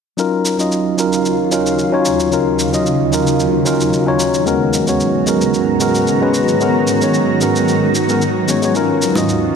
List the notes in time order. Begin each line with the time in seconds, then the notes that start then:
0.17 D#2 C#3 F#3 C#4 D#4 F4 A#4, shaker
0.45 shaker
0.58 F#3 C#4 D#4 F4 D#5, shaker
0.72 shaker
0.97 F#3 C#4 D#4 F4 A#4, shaker
1.13 shaker
1.25 shaker
1.51 F#3 C#4 D#4 F4 A#4, shaker
1.66 shaker
1.79 shaker
1.92 F#3 C#4 D#4 F4 C#5
2.05 shaker
2.20 shaker
2.31 F#3 C#4 D#4 F4 A#4, shaker
2.59 shaker
2.72 F#3 C#4 D#4 F4 D#5, shaker
2.86 shaker
3.12 F#3 C#4 D#4 F4 A#4, shaker
3.27 shaker
3.40 shaker
3.65 F#3 C#4 D#4 F4 A#4, shaker
3.81 shaker
3.93 shaker
4.06 F#3 C#4 D#4 F4 C#5
4.20 shaker
4.34 shaker
4.45 G#2 D#3 G#3 B3 C#4 F#4 A#4 A#5, shaker
4.73 shaker
4.87 G#3 B3 C#4 F#4 C#5, shaker
5.00 shaker
5.26 G#3 B3 C#4 F#4 A#4, shaker
5.41 shaker
5.54 shaker
5.80 G#3 B3 C#4 F#4 A#4, shaker
5.95 shaker
6.07 shaker
6.21 G#3 B3 C#4 F#4 B4
6.34 shaker
6.48 shaker
6.60 G#3 B3 C#4 F#4 A#4, shaker
6.87 shaker
7.01 G#3 B3 C#4 F#4 C#5, shaker
7.14 shaker
7.40 G#3 B3 C#4 F#4 A#4, shaker
7.56 shaker
7.68 shaker
7.95 shaker
8.08 G#3 B3 C#4 F#4 A#4, shaker
8.22 shaker
8.48 G#3 B3 C#4 F#4 C#5, shaker
8.62 G#3 B3 C#4 F#4 C#5, shaker
8.74 D#2 C#3 F#3 C#4 D#4 F4 A#4, shaker
9.02 shaker
9.15 F#3 C#4 D#4 F4 D#5, high bongo, shaker
9.29 shaker